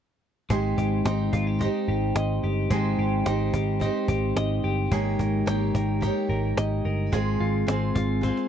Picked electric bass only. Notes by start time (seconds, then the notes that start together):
0.50 G#1
0.78 G#1
1.05 G#1
1.33 G#1
1.88 G#1
2.16 G#1
2.44 G1
2.71 G#1
2.98 G#1
3.26 G#1
3.54 G#1
4.09 G#1
4.36 G#1
4.64 G1
4.92 G#1
5.20 G#1
5.47 G#1
5.75 G#1
6.29 G#1
6.57 G#1
6.85 G1
7.13 G#1
7.40 G#1
7.68 G#1
7.96 G#1